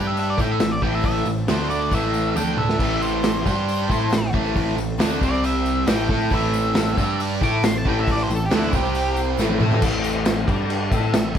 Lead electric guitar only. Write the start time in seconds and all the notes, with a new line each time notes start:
0.07 E5
0.19 E5
0.30 D5
0.41 G5
0.52 E5
0.61 E5
0.71 D5
0.82 G5
0.95 E5
1.06 E5
1.50 C5
1.70 D5
1.95 E5
2.37 G5
2.58 E5
3.02 C5
5.24 D5
5.44 E5
5.89 G5
6.35 E5
7.44 D6
7.65 C6
7.78 A5
7.89 G5
8.00 E5
8.12 D5
8.23 C5
8.35 A4
8.46 G4
8.56 E4
8.77 G4